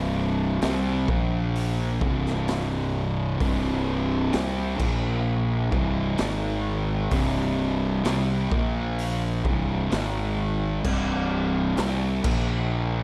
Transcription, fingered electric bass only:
Already playing: C1
0.62 C2
1.09 A#1
2.01 C1
3.41 C1
4.34 C2
4.80 A#1
5.72 C1
6.19 G#1
7.12 C1
8.04 C2
8.51 A#1
9.45 C1
9.92 G#1
10.85 C1
11.77 C2
12.25 A#1

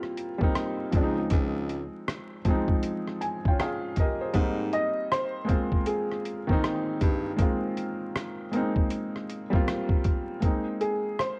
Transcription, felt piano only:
Already playing: G3 A#3 C4 D#4 E4 F4
0.38 G3 A#3 C4
0.44 D#4
0.92 F3 G#3 C4
0.97 D4
1.03 D#4
2.45 F3 G#3 C4
2.50 D#4
3.21 G#5
3.48 C#4 F4 G5
3.61 F4 G#4 F5
4.00 G4 A#4 D#5
4.21 G#4 C5
4.34 G3 A#3 C4
4.39 D#4
5.44 G#3 A#3 C4
5.50 F4
6.47 D#3 A#3 C4
6.52 D#4
7.36 G#3 A#3 C4
7.42 F4
8.51 G#3 A#3 C4
8.57 D#4
9.50 G3 A#3 C4
9.55 F4
10.40 G#3 A#3 C4
10.45 D#4

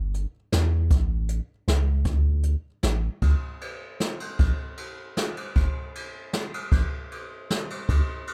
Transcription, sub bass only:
Already playing: G1
0.53 E2
0.91 A1
1.68 C#2
2.05 D2
2.83 A1
3.22 D2
4.40 A#1
5.56 G1
6.72 A1
7.89 D2

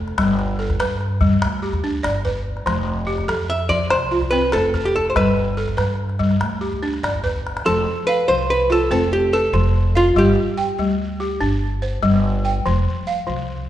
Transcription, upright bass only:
Already playing: F1
0.18 G1
0.80 G2
1.43 D2
2.05 G1
2.66 F1
3.29 F2
3.91 C2
4.54 F1
5.16 G1
5.78 G2
6.41 D2
7.03 G1
7.65 F1
8.28 C2
8.90 F1
9.53 F1
10.16 G1
10.78 D2
11.41 G1
12.02 G1
12.66 F1
13.28 C2

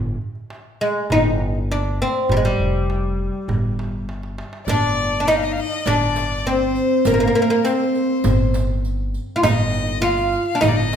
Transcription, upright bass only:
Already playing: G1
1.10 G1
2.29 G1
2.59 F1
3.48 G1
4.67 G1
5.86 G1
7.05 G1
8.24 G1
9.43 G1
10.62 G1

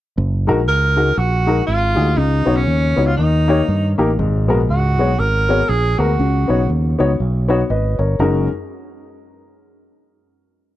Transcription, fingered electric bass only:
0.18 F#1
0.47 A#1
0.68 C#2
1.17 A#1
1.68 G#1
1.97 D2
2.17 C#2
2.46 B1
2.67 D#2
2.97 C#2
3.18 D#2
3.68 G2
3.99 A1
4.19 G#1
4.49 A#1
4.69 C#2
4.98 B1
5.19 G#1
5.69 A#1
5.99 D2
6.19 C#2
6.49 B1
6.70 D#2
7.00 C#2
7.20 B1
7.70 G#1
7.99 G1
8.19 F#1

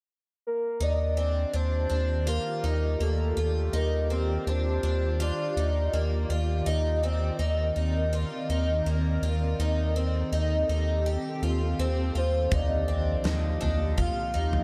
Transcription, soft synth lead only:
0.47 A#4
0.83 D5
1.56 C5
2.28 A#4
3.03 A4
3.76 A#4
4.49 C5
5.22 D5
12.18 C5
12.55 D5
13.26 D#5
14.01 F5

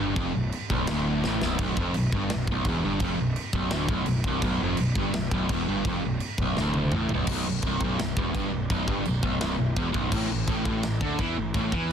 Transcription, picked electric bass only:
0.00 G1
0.16 F1
0.35 B0
0.70 B0
0.89 D1
1.25 A1
1.43 B0
1.59 B0
1.77 F1
1.96 B0
2.13 G1
2.33 B0
2.48 B0
2.65 E1
2.85 G1
3.01 F1
3.19 B0
3.53 B0
3.71 D1
3.89 B0
4.06 B0
4.24 C1
4.42 B0
4.61 F1
4.78 B0
4.95 G1
5.12 B0
5.31 B0
5.50 E1
5.68 G1
5.85 F1
6.04 B0
6.38 B0
6.58 D1
6.93 A1
7.10 B0
7.28 B0
7.47 B0
7.63 C1
7.80 B0
8.01 B0
8.17 E1
8.34 G1
8.51 B0
8.70 B0
8.88 G1
9.06 B0
9.23 B0
9.41 C1
9.59 B0
9.77 E1
9.94 B0
10.12 A1
10.30 A1
10.48 A1
10.66 A1
10.84 A1
11.01 D2
11.19 E2
11.38 A1
11.54 A1
11.72 E2

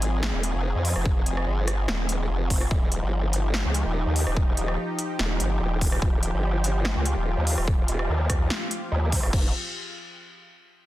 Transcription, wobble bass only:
Already playing: G#1
0.34 D#1
0.54 F1
0.75 F2
0.96 F1
1.16 F1
1.26 F1
1.47 G1
1.88 D#1
2.30 F1
2.50 F1
2.71 D#1
2.92 D#1
3.03 G1
3.65 C#2
3.85 D#1
4.06 D#2
4.27 D#1
4.47 D#1
4.57 D#1
5.19 D#1
5.40 G1
5.61 D#1
6.02 D#1
6.23 D#1
6.34 G1
6.96 C#2
7.16 D#1
7.37 D#2
7.58 D#1
7.78 D#1
7.88 D#1
8.09 D#2
8.30 D#2
8.92 D#2
9.33 F1

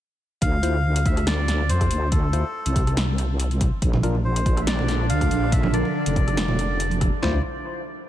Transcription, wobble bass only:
0.42 D2
1.69 F2
1.91 D2
2.66 C2
3.82 A#1
5.10 D2
5.31 A#1
6.06 F1
7.23 D2

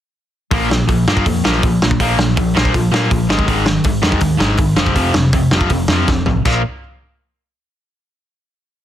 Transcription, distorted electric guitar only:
0.51 A#2 F3 A#3
0.70 A#2 F3
0.88 A#2 F3
1.08 A#2 F3 A#3
1.27 A#2 F3
1.44 A#2 F3 A#3
1.64 A#2 F3
1.83 A#2 F3
2.00 A#2 F3 A#3
2.19 A#2 F3
2.37 A#2 F3
2.55 A#2 F3 A#3
2.75 A#2 F3
2.92 A#2 F3 A#3
3.09 A#2 F3
3.29 G#2 D#3 G#3
3.47 G#2 D#3 G#3
3.66 G#2 D#3
3.85 G#2 D#3
4.02 G#2 D#3 G#3
4.20 G#2 D#3
4.38 G#2 D#3 G#3
4.58 G#2 D#3
4.76 F2 C3 F3
4.95 F2 C3 F3
5.15 F2 C3
5.34 F2 C3
5.53 F2 C3 F3
5.71 F2 C3
5.91 F2 C3 F3
6.10 F2 C3
6.26 F2 C3
6.45 A#2 F3 A#3

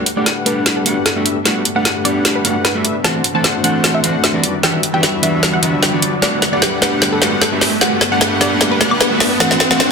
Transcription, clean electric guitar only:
0.16 G3 A3 B3 D4 G4
0.45 G3 A3 B3 D4 G4
0.85 G3 A3 B3 D4 F#4
1.15 G3 A3 B3 D4 F#4
1.44 G3 A3 B3 D4 F#4
1.75 G3 A3 B3 D4 G4
2.04 G3 A3 B3 D4 G4
2.44 G3 A3 B3 D4 F#4
2.74 G3 A3 B3 D4 F#4
3.03 E3 A3 C4 D4 F#4
3.34 E3 A3 C4 D4 A4
3.63 E3 A3 C4 D4 A4
4.03 E3 A3 C4 D4 F#4
4.33 E3 A3 C4 D4 F#4
4.62 E3 G3 B3 D4 F#4
4.93 E3 G3 B3 D4 G4
5.22 E3 G3 B3 D4
5.62 E3 G3 B3 D4 F#4
5.92 E3 G3 B3 D4 F#4
6.21 G3 A3 B3 D4 F#4
6.52 G3 A3 B3 D4 G4
6.81 G3 A3 B3 D4 G4
7.21 G3 A3 B3 D4 F#4
7.51 G3 A3 B3 D4 F#4
7.80 G3 A3 B3 D4 F#4
8.11 G3 A3 B3 D4 G4
8.40 G3 A3 B3 D4 G4
8.80 G3 A3 B3 D4 F#4
9.10 G3 A3 B3 D4 F#4
9.39 E3 A3 C4 D4 F#4
9.70 E3 A3 C4 D4 A4

